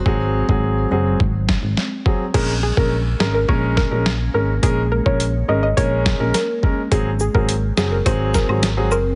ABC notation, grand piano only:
X:1
M:4/4
L:1/16
Q:1/4=105
K:Bbm
V:1 name="Grand piano"
[G,CA]3 [G,CA]3 [G,CA]2 z6 [G,CA] z | [A,DB] z2 [A,DB] z2 [A,DB] z [A,DB]3 [A,DB] z2 [A,DB] z | [A,DB] z2 [A,DB] z2 [A,DB] z [A,DB]3 [A,DB] z2 [A,DB] z | [G,CA] z2 [G,CA] z2 [G,CA] z [G,CA]3 [G,CA] z [G,CA] z2 |]